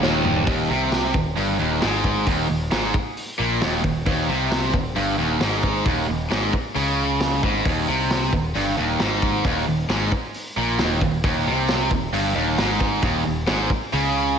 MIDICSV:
0, 0, Header, 1, 4, 480
1, 0, Start_track
1, 0, Tempo, 448430
1, 512, Time_signature, 4, 2, 24, 8
1, 15400, End_track
2, 0, Start_track
2, 0, Title_t, "Overdriven electric guitar"
2, 0, Program_c, 0, 29
2, 23, Note_on_c, 0, 39, 115
2, 493, Note_off_c, 0, 39, 0
2, 506, Note_on_c, 0, 39, 99
2, 741, Note_on_c, 0, 48, 96
2, 742, Note_off_c, 0, 39, 0
2, 1219, Note_off_c, 0, 48, 0
2, 1224, Note_on_c, 0, 39, 81
2, 1420, Note_off_c, 0, 39, 0
2, 1468, Note_on_c, 0, 43, 87
2, 1701, Note_off_c, 0, 43, 0
2, 1706, Note_on_c, 0, 39, 108
2, 1942, Note_off_c, 0, 39, 0
2, 1948, Note_on_c, 0, 44, 114
2, 2424, Note_off_c, 0, 44, 0
2, 2427, Note_on_c, 0, 39, 93
2, 2660, Note_off_c, 0, 39, 0
2, 2673, Note_on_c, 0, 39, 72
2, 2866, Note_off_c, 0, 39, 0
2, 2913, Note_on_c, 0, 44, 99
2, 3147, Note_off_c, 0, 44, 0
2, 3628, Note_on_c, 0, 46, 101
2, 3865, Note_off_c, 0, 46, 0
2, 3874, Note_on_c, 0, 39, 105
2, 4103, Note_off_c, 0, 39, 0
2, 4116, Note_on_c, 0, 39, 67
2, 4308, Note_off_c, 0, 39, 0
2, 4349, Note_on_c, 0, 39, 115
2, 4586, Note_off_c, 0, 39, 0
2, 4593, Note_on_c, 0, 48, 91
2, 5065, Note_on_c, 0, 39, 76
2, 5068, Note_off_c, 0, 48, 0
2, 5263, Note_off_c, 0, 39, 0
2, 5305, Note_on_c, 0, 43, 108
2, 5540, Note_off_c, 0, 43, 0
2, 5544, Note_on_c, 0, 39, 103
2, 5780, Note_on_c, 0, 44, 106
2, 5784, Note_off_c, 0, 39, 0
2, 6262, Note_off_c, 0, 44, 0
2, 6262, Note_on_c, 0, 39, 102
2, 6493, Note_off_c, 0, 39, 0
2, 6506, Note_on_c, 0, 39, 73
2, 6704, Note_off_c, 0, 39, 0
2, 6742, Note_on_c, 0, 44, 95
2, 6983, Note_off_c, 0, 44, 0
2, 7231, Note_on_c, 0, 49, 99
2, 7947, Note_off_c, 0, 49, 0
2, 7958, Note_on_c, 0, 44, 93
2, 8190, Note_off_c, 0, 44, 0
2, 8198, Note_on_c, 0, 39, 95
2, 8430, Note_off_c, 0, 39, 0
2, 8436, Note_on_c, 0, 48, 107
2, 8909, Note_off_c, 0, 48, 0
2, 8918, Note_on_c, 0, 39, 81
2, 9109, Note_off_c, 0, 39, 0
2, 9147, Note_on_c, 0, 43, 87
2, 9384, Note_off_c, 0, 43, 0
2, 9389, Note_on_c, 0, 39, 90
2, 9625, Note_off_c, 0, 39, 0
2, 9635, Note_on_c, 0, 44, 110
2, 10108, Note_off_c, 0, 44, 0
2, 10108, Note_on_c, 0, 39, 106
2, 10337, Note_off_c, 0, 39, 0
2, 10350, Note_on_c, 0, 39, 70
2, 10544, Note_off_c, 0, 39, 0
2, 10592, Note_on_c, 0, 44, 99
2, 10826, Note_off_c, 0, 44, 0
2, 11319, Note_on_c, 0, 46, 111
2, 11549, Note_off_c, 0, 46, 0
2, 11550, Note_on_c, 0, 39, 106
2, 11784, Note_off_c, 0, 39, 0
2, 11800, Note_on_c, 0, 39, 76
2, 11988, Note_off_c, 0, 39, 0
2, 12035, Note_on_c, 0, 39, 97
2, 12266, Note_off_c, 0, 39, 0
2, 12274, Note_on_c, 0, 48, 96
2, 12745, Note_off_c, 0, 48, 0
2, 12745, Note_on_c, 0, 39, 78
2, 12940, Note_off_c, 0, 39, 0
2, 12987, Note_on_c, 0, 43, 98
2, 13215, Note_off_c, 0, 43, 0
2, 13219, Note_on_c, 0, 39, 92
2, 13457, Note_off_c, 0, 39, 0
2, 13469, Note_on_c, 0, 44, 102
2, 13942, Note_off_c, 0, 44, 0
2, 13944, Note_on_c, 0, 39, 105
2, 14174, Note_off_c, 0, 39, 0
2, 14187, Note_on_c, 0, 39, 78
2, 14380, Note_off_c, 0, 39, 0
2, 14423, Note_on_c, 0, 44, 95
2, 14659, Note_off_c, 0, 44, 0
2, 14914, Note_on_c, 0, 49, 94
2, 15400, Note_off_c, 0, 49, 0
2, 15400, End_track
3, 0, Start_track
3, 0, Title_t, "Picked electric bass"
3, 0, Program_c, 1, 34
3, 30, Note_on_c, 1, 27, 92
3, 477, Note_off_c, 1, 27, 0
3, 503, Note_on_c, 1, 27, 81
3, 730, Note_off_c, 1, 27, 0
3, 754, Note_on_c, 1, 36, 98
3, 1199, Note_off_c, 1, 36, 0
3, 1220, Note_on_c, 1, 27, 63
3, 1449, Note_off_c, 1, 27, 0
3, 1467, Note_on_c, 1, 31, 85
3, 1693, Note_off_c, 1, 31, 0
3, 1719, Note_on_c, 1, 27, 99
3, 1940, Note_off_c, 1, 27, 0
3, 1954, Note_on_c, 1, 32, 86
3, 2401, Note_off_c, 1, 32, 0
3, 2429, Note_on_c, 1, 27, 83
3, 2655, Note_off_c, 1, 27, 0
3, 2668, Note_on_c, 1, 27, 72
3, 2895, Note_off_c, 1, 27, 0
3, 2906, Note_on_c, 1, 32, 90
3, 3134, Note_off_c, 1, 32, 0
3, 3637, Note_on_c, 1, 34, 91
3, 3860, Note_off_c, 1, 34, 0
3, 3874, Note_on_c, 1, 27, 78
3, 4099, Note_off_c, 1, 27, 0
3, 4114, Note_on_c, 1, 27, 83
3, 4339, Note_off_c, 1, 27, 0
3, 4349, Note_on_c, 1, 27, 81
3, 4576, Note_off_c, 1, 27, 0
3, 4587, Note_on_c, 1, 36, 97
3, 5039, Note_off_c, 1, 36, 0
3, 5068, Note_on_c, 1, 27, 79
3, 5296, Note_off_c, 1, 27, 0
3, 5307, Note_on_c, 1, 31, 97
3, 5535, Note_off_c, 1, 31, 0
3, 5544, Note_on_c, 1, 27, 88
3, 5774, Note_off_c, 1, 27, 0
3, 5779, Note_on_c, 1, 32, 80
3, 6234, Note_off_c, 1, 32, 0
3, 6267, Note_on_c, 1, 27, 85
3, 6495, Note_off_c, 1, 27, 0
3, 6515, Note_on_c, 1, 27, 84
3, 6740, Note_off_c, 1, 27, 0
3, 6747, Note_on_c, 1, 32, 92
3, 6975, Note_off_c, 1, 32, 0
3, 7231, Note_on_c, 1, 37, 88
3, 7911, Note_off_c, 1, 37, 0
3, 7955, Note_on_c, 1, 32, 96
3, 8179, Note_off_c, 1, 32, 0
3, 8192, Note_on_c, 1, 27, 80
3, 8418, Note_off_c, 1, 27, 0
3, 8437, Note_on_c, 1, 36, 89
3, 8883, Note_off_c, 1, 36, 0
3, 8912, Note_on_c, 1, 27, 78
3, 9137, Note_off_c, 1, 27, 0
3, 9152, Note_on_c, 1, 31, 82
3, 9377, Note_off_c, 1, 31, 0
3, 9400, Note_on_c, 1, 27, 84
3, 9621, Note_off_c, 1, 27, 0
3, 9629, Note_on_c, 1, 32, 82
3, 10078, Note_off_c, 1, 32, 0
3, 10114, Note_on_c, 1, 27, 87
3, 10338, Note_off_c, 1, 27, 0
3, 10351, Note_on_c, 1, 27, 78
3, 10576, Note_off_c, 1, 27, 0
3, 10580, Note_on_c, 1, 32, 97
3, 10810, Note_off_c, 1, 32, 0
3, 11312, Note_on_c, 1, 34, 94
3, 11535, Note_off_c, 1, 34, 0
3, 11556, Note_on_c, 1, 27, 91
3, 11777, Note_off_c, 1, 27, 0
3, 11792, Note_on_c, 1, 27, 81
3, 12015, Note_off_c, 1, 27, 0
3, 12031, Note_on_c, 1, 27, 83
3, 12254, Note_off_c, 1, 27, 0
3, 12272, Note_on_c, 1, 36, 90
3, 12717, Note_off_c, 1, 36, 0
3, 12748, Note_on_c, 1, 27, 69
3, 12973, Note_off_c, 1, 27, 0
3, 12985, Note_on_c, 1, 31, 91
3, 13211, Note_off_c, 1, 31, 0
3, 13224, Note_on_c, 1, 27, 86
3, 13450, Note_off_c, 1, 27, 0
3, 13463, Note_on_c, 1, 32, 78
3, 13912, Note_off_c, 1, 32, 0
3, 13948, Note_on_c, 1, 27, 86
3, 14172, Note_off_c, 1, 27, 0
3, 14196, Note_on_c, 1, 27, 75
3, 14416, Note_off_c, 1, 27, 0
3, 14436, Note_on_c, 1, 32, 99
3, 14656, Note_off_c, 1, 32, 0
3, 14913, Note_on_c, 1, 37, 92
3, 15400, Note_off_c, 1, 37, 0
3, 15400, End_track
4, 0, Start_track
4, 0, Title_t, "Drums"
4, 29, Note_on_c, 9, 38, 97
4, 136, Note_off_c, 9, 38, 0
4, 263, Note_on_c, 9, 43, 97
4, 370, Note_off_c, 9, 43, 0
4, 385, Note_on_c, 9, 43, 91
4, 492, Note_off_c, 9, 43, 0
4, 505, Note_on_c, 9, 36, 115
4, 505, Note_on_c, 9, 46, 60
4, 612, Note_off_c, 9, 36, 0
4, 612, Note_off_c, 9, 46, 0
4, 984, Note_on_c, 9, 46, 52
4, 985, Note_on_c, 9, 38, 105
4, 1091, Note_off_c, 9, 46, 0
4, 1092, Note_off_c, 9, 38, 0
4, 1224, Note_on_c, 9, 36, 95
4, 1331, Note_off_c, 9, 36, 0
4, 1465, Note_on_c, 9, 46, 49
4, 1572, Note_off_c, 9, 46, 0
4, 1945, Note_on_c, 9, 46, 55
4, 1946, Note_on_c, 9, 38, 108
4, 2052, Note_off_c, 9, 46, 0
4, 2053, Note_off_c, 9, 38, 0
4, 2186, Note_on_c, 9, 36, 84
4, 2293, Note_off_c, 9, 36, 0
4, 2428, Note_on_c, 9, 36, 111
4, 2430, Note_on_c, 9, 46, 62
4, 2535, Note_off_c, 9, 36, 0
4, 2537, Note_off_c, 9, 46, 0
4, 2905, Note_on_c, 9, 46, 52
4, 2906, Note_on_c, 9, 38, 114
4, 3012, Note_off_c, 9, 46, 0
4, 3014, Note_off_c, 9, 38, 0
4, 3149, Note_on_c, 9, 36, 101
4, 3256, Note_off_c, 9, 36, 0
4, 3391, Note_on_c, 9, 46, 60
4, 3498, Note_off_c, 9, 46, 0
4, 3868, Note_on_c, 9, 46, 62
4, 3869, Note_on_c, 9, 38, 102
4, 3975, Note_off_c, 9, 46, 0
4, 3976, Note_off_c, 9, 38, 0
4, 4110, Note_on_c, 9, 36, 91
4, 4217, Note_off_c, 9, 36, 0
4, 4347, Note_on_c, 9, 46, 58
4, 4350, Note_on_c, 9, 36, 107
4, 4454, Note_off_c, 9, 46, 0
4, 4457, Note_off_c, 9, 36, 0
4, 4831, Note_on_c, 9, 46, 55
4, 4832, Note_on_c, 9, 38, 116
4, 4938, Note_off_c, 9, 46, 0
4, 4939, Note_off_c, 9, 38, 0
4, 5069, Note_on_c, 9, 36, 99
4, 5176, Note_off_c, 9, 36, 0
4, 5310, Note_on_c, 9, 46, 49
4, 5417, Note_off_c, 9, 46, 0
4, 5787, Note_on_c, 9, 46, 54
4, 5788, Note_on_c, 9, 38, 113
4, 5894, Note_off_c, 9, 46, 0
4, 5895, Note_off_c, 9, 38, 0
4, 6029, Note_on_c, 9, 36, 88
4, 6137, Note_off_c, 9, 36, 0
4, 6269, Note_on_c, 9, 46, 57
4, 6270, Note_on_c, 9, 36, 119
4, 6376, Note_off_c, 9, 46, 0
4, 6377, Note_off_c, 9, 36, 0
4, 6758, Note_on_c, 9, 46, 53
4, 6759, Note_on_c, 9, 38, 110
4, 6865, Note_off_c, 9, 46, 0
4, 6866, Note_off_c, 9, 38, 0
4, 6992, Note_on_c, 9, 36, 91
4, 7099, Note_off_c, 9, 36, 0
4, 7232, Note_on_c, 9, 46, 56
4, 7339, Note_off_c, 9, 46, 0
4, 7711, Note_on_c, 9, 46, 60
4, 7712, Note_on_c, 9, 38, 117
4, 7818, Note_off_c, 9, 46, 0
4, 7819, Note_off_c, 9, 38, 0
4, 7954, Note_on_c, 9, 36, 91
4, 8061, Note_off_c, 9, 36, 0
4, 8194, Note_on_c, 9, 36, 120
4, 8194, Note_on_c, 9, 46, 63
4, 8301, Note_off_c, 9, 36, 0
4, 8301, Note_off_c, 9, 46, 0
4, 8676, Note_on_c, 9, 46, 58
4, 8677, Note_on_c, 9, 38, 109
4, 8783, Note_off_c, 9, 46, 0
4, 8784, Note_off_c, 9, 38, 0
4, 8913, Note_on_c, 9, 36, 88
4, 9020, Note_off_c, 9, 36, 0
4, 9154, Note_on_c, 9, 46, 57
4, 9261, Note_off_c, 9, 46, 0
4, 9630, Note_on_c, 9, 46, 55
4, 9631, Note_on_c, 9, 38, 112
4, 9737, Note_off_c, 9, 46, 0
4, 9739, Note_off_c, 9, 38, 0
4, 9873, Note_on_c, 9, 36, 92
4, 9980, Note_off_c, 9, 36, 0
4, 10109, Note_on_c, 9, 46, 60
4, 10112, Note_on_c, 9, 36, 114
4, 10216, Note_off_c, 9, 46, 0
4, 10219, Note_off_c, 9, 36, 0
4, 10592, Note_on_c, 9, 46, 61
4, 10593, Note_on_c, 9, 38, 115
4, 10699, Note_off_c, 9, 46, 0
4, 10700, Note_off_c, 9, 38, 0
4, 10831, Note_on_c, 9, 36, 96
4, 10938, Note_off_c, 9, 36, 0
4, 11070, Note_on_c, 9, 46, 57
4, 11177, Note_off_c, 9, 46, 0
4, 11546, Note_on_c, 9, 46, 59
4, 11547, Note_on_c, 9, 38, 115
4, 11653, Note_off_c, 9, 46, 0
4, 11654, Note_off_c, 9, 38, 0
4, 11790, Note_on_c, 9, 36, 97
4, 11897, Note_off_c, 9, 36, 0
4, 12029, Note_on_c, 9, 46, 67
4, 12030, Note_on_c, 9, 36, 126
4, 12136, Note_off_c, 9, 46, 0
4, 12137, Note_off_c, 9, 36, 0
4, 12508, Note_on_c, 9, 46, 60
4, 12509, Note_on_c, 9, 38, 104
4, 12615, Note_off_c, 9, 46, 0
4, 12616, Note_off_c, 9, 38, 0
4, 12748, Note_on_c, 9, 36, 84
4, 12855, Note_off_c, 9, 36, 0
4, 12989, Note_on_c, 9, 46, 57
4, 13096, Note_off_c, 9, 46, 0
4, 13468, Note_on_c, 9, 46, 60
4, 13469, Note_on_c, 9, 38, 107
4, 13575, Note_off_c, 9, 46, 0
4, 13576, Note_off_c, 9, 38, 0
4, 13706, Note_on_c, 9, 36, 92
4, 13813, Note_off_c, 9, 36, 0
4, 13942, Note_on_c, 9, 46, 59
4, 13944, Note_on_c, 9, 36, 123
4, 14049, Note_off_c, 9, 46, 0
4, 14051, Note_off_c, 9, 36, 0
4, 14420, Note_on_c, 9, 46, 60
4, 14421, Note_on_c, 9, 38, 123
4, 14527, Note_off_c, 9, 46, 0
4, 14528, Note_off_c, 9, 38, 0
4, 14664, Note_on_c, 9, 36, 92
4, 14771, Note_off_c, 9, 36, 0
4, 14903, Note_on_c, 9, 46, 59
4, 15010, Note_off_c, 9, 46, 0
4, 15400, End_track
0, 0, End_of_file